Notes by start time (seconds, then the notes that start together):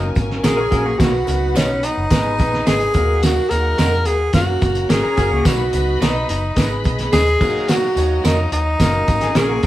Already playing: F#3 A#3 C#4 D#4 A#4 G#5
0.15 G#1, kick, closed hi-hat, tambourine
0.31 snare
0.44 A#1 C#4 F#4 G#4 A#4, snare, closed hi-hat, tambourine
0.57 C#4 A#4
0.70 A#1 F#3 A#3 C#4 F#4 G#4 A#4, kick, closed hi-hat, tambourine
0.85 A#3 F#4
0.97 B1 F#3 B3 D#4 F#4 B4 F#5, kick, snare, closed hi-hat, tambourine
1.25 C#2 F#3 B3 D#4 A#4, closed hi-hat, tambourine
1.34 B4
1.55 B1 C#4 F#4 B4 D#5, snare, closed hi-hat, tambourine
1.83 D#4, closed hi-hat, tambourine
1.97 F#1
2.10 G#1 G#3 B3 D#4 B4 G#5, kick, snare, closed hi-hat, tambourine
2.38 A#1, kick, closed hi-hat, tambourine
2.54 snare
2.66 G#1 G#4 B4 D#5, snare, closed hi-hat, tambourine
2.80 closed hi-hat
2.94 D#2 F#3 A#3 D#4 A#4 F#5, kick, closed hi-hat, tambourine
3.23 F#4, snare, closed hi-hat, tambourine
3.50 D#2 F#3 A#3 D#4 G#4 A#4, closed hi-hat, tambourine
3.78 F2 F#4 A#4 D#5, snare, closed hi-hat, tambourine
4.05 D#2 G#4, closed hi-hat, tambourine
4.33 F#2 F#3 A#3 C#4 F#4 A#4 C#5 A#5, kick, snare, closed hi-hat, tambourine
4.62 F#1, kick, closed hi-hat, tambourine
4.75 closed hi-hat
4.89 G#1 C#4 F#4 G#4 A#4, snare, closed hi-hat, tambourine
5.03 C#4 A#4
5.17 F#1 F#3 A#3 C#4 F#4 G#4 A#4, kick, closed hi-hat, tambourine
5.31 C#2 A#3 F#4
5.45 B1 F#3 B3 D#4 F#4 B4 D#5 B5, kick, snare, closed hi-hat, tambourine
5.73 C#2 F#3 B3 D#4 B4, closed hi-hat, tambourine
6.01 B1 D#4 F#4 B4 D#5, snare, closed hi-hat, tambourine
6.29 F#1 D#4, closed hi-hat, tambourine
6.56 G#1 G#3 B3 D#4 G#4 B4 D#5 B5, kick, snare, closed hi-hat, tambourine
6.84 B1, kick, closed hi-hat, tambourine
6.99 snare, closed hi-hat
7.12 D#2 G#4 B4 D#5, snare, closed hi-hat, tambourine
7.26 closed hi-hat
7.40 D#3 F#3 A#3 D#4 F#4 A#4 D#5 A#5, kick, tambourine, crash
7.68 F#4, snare, closed hi-hat, tambourine
7.95 D#2 F#3 A#3 D#4 C#5, closed hi-hat, tambourine
8.24 F2 D#4 F#4 A#4 D#5, snare, closed hi-hat, tambourine
8.52 D#2 D#4, closed hi-hat, tambourine
8.79 F#1 F#3 A#3 C#4 A#4 G#5, kick, snare, closed hi-hat, tambourine
9.08 G#1, kick, closed hi-hat, tambourine
9.21 G#4, snare, closed hi-hat
9.35 A#1 C#4 F#4 G#4 A#4, snare, closed hi-hat, tambourine
9.49 A#3 F#4
9.63 A#1 F#3 C#4, kick, closed hi-hat, tambourine